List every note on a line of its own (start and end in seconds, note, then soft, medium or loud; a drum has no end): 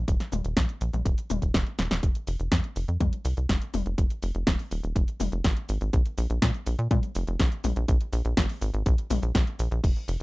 0.08 0.17 D#1 loud
0.08 kick loud
0.08 closed hi-hat medium
0.08 cabasa soft
0.20 snare soft
0.20 closed hi-hat soft
0.20 cabasa soft
0.32 0.41 D#1 medium
0.32 closed hi-hat soft
0.32 high tom medium
0.32 cabasa medium
0.45 0.54 D#1 medium
0.45 closed hi-hat soft
0.45 cabasa soft
0.57 0.66 A#1 loud
0.57 kick loud
0.57 snare loud
0.57 closed hi-hat medium
0.57 cabasa soft
0.69 closed hi-hat soft
0.69 cabasa soft
0.81 0.90 A#1 medium
0.81 closed hi-hat medium
0.81 cabasa medium
0.93 1.03 A#1 medium
0.93 closed hi-hat soft
0.93 high tom medium
0.93 cabasa soft
1.05 1.15 D#1 loud
1.05 kick loud
1.05 closed hi-hat medium
1.05 cabasa soft
1.18 closed hi-hat soft
1.18 cabasa soft
1.30 1.39 D#1 medium
1.30 closed hi-hat medium
1.30 high tom medium
1.30 cabasa medium
1.42 1.51 D#1 medium
1.42 kick medium
1.42 closed hi-hat soft
1.42 cabasa soft
1.54 1.63 D#1 loud
1.54 kick loud
1.54 snare loud
1.54 closed hi-hat medium
1.54 cabasa soft
1.67 closed hi-hat soft
1.79 1.88 D#1 medium
1.79 snare medium
1.79 closed hi-hat medium
1.79 cabasa medium
1.91 2.00 D#1 medium
1.91 snare loud
1.91 closed hi-hat soft
1.91 cabasa soft
2.03 2.12 F1 loud
2.03 kick loud
2.03 closed hi-hat medium
2.03 cabasa soft
2.15 closed hi-hat soft
2.15 cabasa soft
2.27 2.37 F1 medium
2.27 open hi-hat loud
2.27 cabasa medium
2.40 2.49 F1 medium
2.40 closed hi-hat soft
2.40 cabasa soft
2.52 2.61 F2 loud
2.52 kick loud
2.52 snare loud
2.52 closed hi-hat medium
2.52 cabasa soft
2.64 closed hi-hat soft
2.64 cabasa soft
2.76 2.85 F1 medium
2.76 open hi-hat loud
2.76 cabasa medium
2.88 2.98 F2 medium
2.88 closed hi-hat soft
2.88 cabasa soft
3.00 3.10 F2 loud
3.00 kick loud
3.00 closed hi-hat medium
3.00 high tom medium
3.00 cabasa soft
3.13 closed hi-hat soft
3.13 cabasa soft
3.25 3.34 C2 medium
3.25 open hi-hat loud
3.25 cabasa medium
3.37 3.46 C2 medium
3.37 closed hi-hat soft
3.37 cabasa soft
3.49 3.58 F1 loud
3.49 kick loud
3.49 snare loud
3.49 closed hi-hat medium
3.49 cabasa soft
3.62 closed hi-hat soft
3.62 cabasa soft
3.74 3.83 F1 medium
3.74 open hi-hat loud
3.74 high tom medium
3.74 cabasa medium
3.86 3.95 F1 medium
3.86 closed hi-hat soft
3.86 cabasa soft
3.98 4.07 F1 loud
3.98 kick loud
3.98 closed hi-hat medium
3.98 cabasa soft
4.10 closed hi-hat soft
4.10 cabasa soft
4.22 4.32 F1 medium
4.22 open hi-hat medium
4.22 cabasa medium
4.35 4.44 F1 medium
4.35 closed hi-hat soft
4.35 cabasa soft
4.47 4.56 D#1 loud
4.47 kick loud
4.47 snare loud
4.47 closed hi-hat medium
4.47 cabasa soft
4.59 open hi-hat medium
4.59 cabasa soft
4.71 4.80 D#1 medium
4.71 open hi-hat loud
4.71 cabasa medium
4.83 4.93 D#1 medium
4.83 closed hi-hat soft
4.83 cabasa soft
4.96 5.05 F1 loud
4.96 kick loud
4.96 closed hi-hat medium
4.96 cabasa soft
5.08 closed hi-hat soft
5.08 cabasa soft
5.20 5.29 F1 medium
5.20 open hi-hat loud
5.20 high tom medium
5.20 cabasa medium
5.32 5.41 F1 medium
5.32 closed hi-hat soft
5.32 cabasa soft
5.44 5.54 G#1 loud
5.44 kick loud
5.44 snare loud
5.44 closed hi-hat medium
5.44 cabasa soft
5.57 closed hi-hat soft
5.57 cabasa soft
5.69 5.78 G#1 medium
5.69 open hi-hat loud
5.69 cabasa medium
5.81 5.90 G#1 medium
5.81 closed hi-hat soft
5.81 cabasa soft
5.93 6.02 A#1 loud
5.93 kick loud
5.93 closed hi-hat medium
5.93 cabasa soft
6.06 closed hi-hat soft
6.06 cabasa soft
6.18 6.27 A#1 loud
6.18 open hi-hat loud
6.18 cabasa medium
6.30 6.39 A#1 medium
6.30 closed hi-hat soft
6.30 cabasa soft
6.42 6.51 A#2 loud
6.42 kick loud
6.42 snare loud
6.42 closed hi-hat medium
6.42 cabasa soft
6.54 closed hi-hat soft
6.54 cabasa soft
6.66 6.76 A#1 medium
6.66 open hi-hat loud
6.66 cabasa medium
6.79 6.88 A#2 medium
6.79 closed hi-hat soft
6.79 cabasa soft
6.91 7.00 A#2 loud
6.91 kick loud
6.91 closed hi-hat medium
6.91 high tom medium
6.91 cabasa soft
7.03 closed hi-hat soft
7.03 cabasa soft
7.15 7.24 F1 loud
7.15 open hi-hat loud
7.15 cabasa medium
7.27 7.37 F1 medium
7.27 closed hi-hat soft
7.27 cabasa soft
7.40 7.49 A#1 loud
7.40 kick loud
7.40 snare loud
7.40 closed hi-hat medium
7.40 cabasa soft
7.52 closed hi-hat soft
7.52 cabasa soft
7.64 7.73 A#1 medium
7.64 open hi-hat loud
7.64 high tom medium
7.64 cabasa medium
7.76 7.85 A#1 medium
7.76 closed hi-hat soft
7.76 cabasa soft
7.88 7.98 A#1 loud
7.88 kick loud
7.88 closed hi-hat medium
7.88 cabasa soft
8.01 closed hi-hat soft
8.01 cabasa soft
8.13 8.22 A#1 loud
8.13 open hi-hat loud
8.13 cabasa medium
8.25 8.34 A#1 medium
8.25 closed hi-hat soft
8.25 cabasa soft
8.37 8.46 G#1 loud
8.37 kick loud
8.37 snare loud
8.37 closed hi-hat medium
8.37 cabasa soft
8.49 open hi-hat medium
8.49 cabasa soft
8.61 8.71 G#1 medium
8.61 open hi-hat loud
8.61 cabasa medium
8.74 8.83 G#1 medium
8.74 closed hi-hat soft
8.74 cabasa soft
8.86 8.95 A#1 loud
8.86 kick loud
8.86 closed hi-hat medium
8.86 cabasa soft
8.98 closed hi-hat soft
8.98 cabasa soft
9.10 9.19 A#1 medium
9.10 open hi-hat loud
9.10 high tom medium
9.10 cabasa medium
9.23 9.32 A#1 medium
9.23 closed hi-hat soft
9.23 cabasa soft
9.35 9.44 A#1 loud
9.35 kick loud
9.35 snare loud
9.35 closed hi-hat medium
9.35 cabasa soft
9.47 closed hi-hat soft
9.47 cabasa soft
9.59 9.68 A#1 medium
9.59 open hi-hat loud
9.59 cabasa medium
9.71 9.80 A#1 medium
9.71 closed hi-hat soft
9.71 cabasa soft
9.84 9.93 F1 loud
9.84 kick loud
9.84 closed hi-hat medium
9.84 crash loud
9.84 cabasa soft
9.96 cabasa soft
10.08 10.17 F1 medium
10.08 open hi-hat loud
10.08 cabasa medium